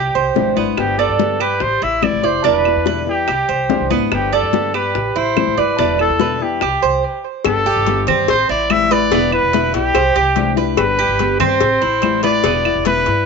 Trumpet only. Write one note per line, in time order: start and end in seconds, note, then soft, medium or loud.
0.00 0.57 G4 medium
0.79 1.00 G4 medium
0.99 1.43 A4 medium
1.41 1.63 B4 medium
1.62 1.84 C5 medium
1.83 2.05 E5 medium
2.03 2.26 D5 medium
2.25 2.45 C5 medium
2.45 3.04 B4 medium
3.09 3.88 G4 medium
4.13 4.35 G4 medium
4.34 4.74 A4 medium
4.75 5.19 B4 medium
5.17 5.61 C5 medium
5.59 6.00 B4 medium
6.01 6.44 A4 loud
6.42 7.25 G4 medium
7.46 8.04 A4 loud
8.29 8.48 C5 loud
8.50 8.73 D5 loud
8.71 8.93 E5 loud
8.92 9.32 D5 loud
9.33 9.71 B4 loud
9.75 10.54 G4 loud
10.78 11.36 B4 loud
11.41 12.20 C5 loud
12.24 12.82 D5 loud
12.86 13.26 B4 loud